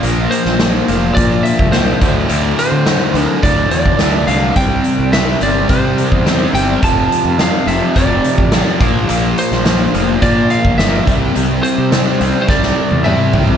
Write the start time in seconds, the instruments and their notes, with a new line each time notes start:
0.03 fingered electric bass A#1, overdriven electric guitar A#2 F3 A#3, closed hi-hat
0.31 lead electric guitar C5, closed hi-hat
0.46 fingered electric bass A#1, snare
0.59 overdriven electric guitar A#2 F3 A#3, snare, closed hi-hat
0.88 fingered electric bass F1, overdriven electric guitar A#2 F3 A#3, closed hi-hat
1.15 overdriven electric guitar A#2 F3 A#3, fingered electric bass A#2, lead electric guitar D5, kick, closed hi-hat
1.43 lead electric guitar E5, closed hi-hat
1.59 fingered electric bass C2, kick
1.72 overdriven electric guitar A#2 F3 A#3, lead electric guitar C5, snare, closed hi-hat
2.01 overdriven electric guitar D2 A2 D3, fingered electric bass D2, kick, closed hi-hat
2.29 fingered electric bass D2, overdriven electric guitar D2 A2 D3, closed hi-hat
2.59 lead electric guitar C5, closed hi-hat
2.72 fingered electric bass D3
2.86 overdriven electric guitar D2 A2 D3, snare, closed hi-hat
3.14 fingered electric bass D2, overdriven electric guitar D2 A2 D3, closed hi-hat
3.22 lead electric guitar A#4
3.43 fingered electric bass D2, overdriven electric guitar D2 A2 D3, lead electric guitar D5, kick, closed hi-hat
3.70 fingered electric bass E2, lead electric guitar D5, closed hi-hat
3.86 kick
3.99 overdriven electric guitar D2 A2 D3, fingered electric bass D2, snare, closed hi-hat
4.27 fingered electric bass C2, overdriven electric guitar D2 A2 D3, lead electric guitar F5, closed hi-hat
4.56 fingered electric bass C2, overdriven electric guitar C3 G3 C4, lead electric guitar G5, kick, closed hi-hat
4.84 closed hi-hat
4.99 fingered electric bass C2
5.13 overdriven electric guitar C3 G3 C4, lead electric guitar E5, snare, closed hi-hat
5.41 fingered electric bass G1, overdriven electric guitar C3 G3 C4, lead electric guitar D5, closed hi-hat
5.69 overdriven electric guitar C3 G3 C4, fingered electric bass C3, lead electric guitar C5, kick, closed hi-hat
5.98 closed hi-hat
6.12 fingered electric bass E2, kick
6.25 overdriven electric guitar C3 G3 C4, snare, closed hi-hat
6.53 fingered electric bass G1, overdriven electric guitar C3 G3 C4, lead electric guitar G5, closed hi-hat
6.82 fingered electric bass F1, overdriven electric guitar F2 C3 F3, lead electric guitar A5, kick, closed hi-hat
7.12 closed hi-hat
7.24 fingered electric bass F2
7.39 overdriven electric guitar F2 C3 F3, lead electric guitar F5, snare, closed hi-hat
7.67 fingered electric bass F1, overdriven electric guitar F2 C3 F3, lead electric guitar E5, closed hi-hat
7.96 fingered electric bass F1, overdriven electric guitar F2 C3 F3, lead electric guitar D5, kick, closed hi-hat
8.24 closed hi-hat
8.38 fingered electric bass A1, kick
8.52 overdriven electric guitar F2 C3 F3, snare, closed hi-hat
8.80 fingered electric bass A#1, overdriven electric guitar A#2 F3 A#3, kick, closed hi-hat
9.08 fingered electric bass A#1, overdriven electric guitar A#2 F3 A#3, closed hi-hat
9.38 lead electric guitar C5, closed hi-hat
9.51 fingered electric bass A#1, snare
9.65 overdriven electric guitar A#2 F3 A#3, snare, closed hi-hat
9.93 fingered electric bass F1, overdriven electric guitar A#2 F3 A#3, closed hi-hat
10.21 overdriven electric guitar A#2 F3 A#3, fingered electric bass A#2, lead electric guitar D5, kick, closed hi-hat
10.50 lead electric guitar F5, closed hi-hat
10.65 fingered electric bass G1, kick
10.78 overdriven electric guitar A#2 F3 A#3, lead electric guitar E5, snare, closed hi-hat
11.07 fingered electric bass C2, overdriven electric guitar C3 G3 C4, kick, closed hi-hat
11.35 fingered electric bass C2, overdriven electric guitar C3 G3 C4, closed hi-hat
11.63 lead electric guitar C5, closed hi-hat
11.78 fingered electric bass C3
11.92 overdriven electric guitar C3 G3 C4, snare, closed hi-hat
12.20 fingered electric bass C2, overdriven electric guitar C3 G3 C4, closed hi-hat
12.42 lead electric guitar C5
12.49 fingered electric bass C2, overdriven electric guitar C3 G3 C4, lead electric guitar D5, kick, snare
12.63 snare
12.91 fingered electric bass E2, high tom
13.04 overdriven electric guitar C3 G3 C4, lead electric guitar E5, mid tom
13.32 fingered electric bass A1, overdriven electric guitar C3 G3 C4, floor tom
13.47 floor tom